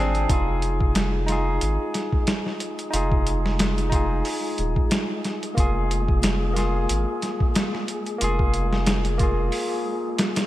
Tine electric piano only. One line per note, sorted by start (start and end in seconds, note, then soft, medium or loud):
0.00 0.32 C4 medium
0.00 0.32 D4 medium
0.00 0.31 F4 medium
0.00 0.27 G#4 loud
0.28 1.24 D#4 medium
0.28 1.26 F4 medium
0.34 1.27 G#4 medium
1.26 2.89 D#4 medium
1.26 2.90 F4 medium
1.32 2.92 G#4 medium
2.91 3.87 D#4 medium
2.91 3.89 F4 medium
2.96 3.90 G#4 medium
3.90 5.52 D#4 medium
3.90 5.54 F4 medium
3.95 5.55 G#4 medium
5.54 6.51 A#3 medium
5.54 6.52 F4 medium
5.60 6.54 G#4 medium
6.53 8.16 A#3 medium
6.53 8.17 F4 medium
6.58 8.18 G#4 medium
8.18 9.15 A#3 medium
8.18 9.17 F4 medium
8.24 9.18 G#4 medium
9.18 10.47 A#3 medium
9.18 10.47 F4 medium
9.23 10.47 G#4 medium